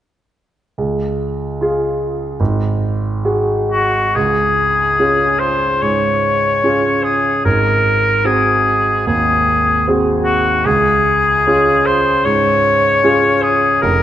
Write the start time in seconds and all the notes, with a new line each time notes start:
0.78 C#2
1.61 F4 G#4
2.40 G#1
3.25 F#4 G#4
3.72 F#4
4.15 C#2 G#4
4.99 C#4 F4 G#4
5.39 C5
5.82 G#2 C#5
6.64 C#4 F4 G#4
7.03 G#4
7.45 G#1 A#4
8.25 C4 F#4 G#4
9.07 D#2 G#4
9.88 C4 F#4 G#4
10.24 F#4
10.65 C#2 G#4
11.47 C#4 F4 G#4
11.86 C5
12.24 G#2 C#5
13.04 C#4 F4 G#4
13.42 G#4
13.82 F1 A#4